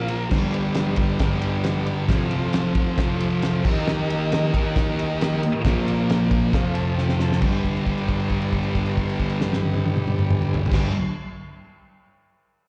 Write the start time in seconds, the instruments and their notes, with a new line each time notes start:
Already playing: distorted electric guitar A#2 F3 A#3, transistor combo organ F4 A#4
0.08 transistor combo organ A#5, ride
0.28 distorted electric guitar G2 D3, transistor combo organ G4 B4, kick, snare, crash
0.33 distorted electric guitar G3, transistor combo organ D5
0.54 ride
0.74 snare, ride
0.96 kick, ride
1.19 distorted electric guitar G2 D3, kick, snare, ride
1.24 distorted electric guitar G3
1.42 ride
1.64 snare, ride
1.87 ride
2.09 distorted electric guitar F2 C3, transistor combo organ F4 A4, kick, snare, ride
2.13 distorted electric guitar F3, transistor combo organ C5
2.31 ride
2.53 snare, ride
2.75 kick, ride
2.98 distorted electric guitar F2 C3, kick, snare, ride
3.02 distorted electric guitar F3
3.20 ride
3.42 snare, ride
3.64 distorted electric guitar D#3 A#3, transistor combo organ G4 A#4 D#5, kick, crash
3.69 distorted electric guitar D#4
3.88 snare
4.10 ride
4.32 snare, ride
4.54 distorted electric guitar D#3 A#3 D#4, kick, ride
4.76 kick, snare, ride
4.99 ride
5.21 snare, ride
5.43 ride
5.62 distorted electric guitar A#2, transistor combo organ F4 A#4 D5, kick, ride
5.66 distorted electric guitar F3 A#3, snare
5.88 ride
6.10 snare, ride
6.30 transistor combo organ D5, kick, ride
6.50 distorted electric guitar F2, transistor combo organ F4 A4, kick, snare, ride
6.55 distorted electric guitar C3 F3, transistor combo organ C5 F5
6.74 transistor combo organ A5, ride
6.95 transistor combo organ G5, snare
7.09 snare
7.20 transistor combo organ A5, snare
7.32 snare
7.40 distorted electric guitar G2 D3, transistor combo organ D4 G4 B4, kick, crash
7.46 distorted electric guitar G3
7.64 kick, crash
7.77 crash
7.87 kick, crash
7.98 crash
8.08 kick, crash
8.20 crash
8.29 kick, crash
8.41 crash
8.53 kick, crash
8.63 crash
8.75 kick, crash
8.86 crash
8.97 kick, crash
9.09 crash
9.20 kick, crash
9.29 crash
9.41 snare
9.53 snare
9.63 high tom
9.74 high tom
9.85 high tom
9.97 mid tom
10.07 mid tom
10.19 mid tom
10.30 mid tom
10.42 mid tom
10.54 floor tom
10.66 transistor combo organ D4 G4 B4, floor tom
10.70 distorted electric guitar G2 D3 G3, kick, snare, crash